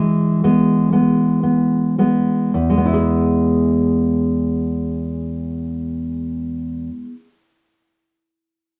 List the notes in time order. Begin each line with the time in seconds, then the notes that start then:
Already playing: E3 G#3 E4
0.44 G#3 B3
0.92 G#3 B3
1.43 B3
1.99 G#3 B3
2.54 E2
2.70 G#3
2.78 B3
2.86 E4
2.93 G#4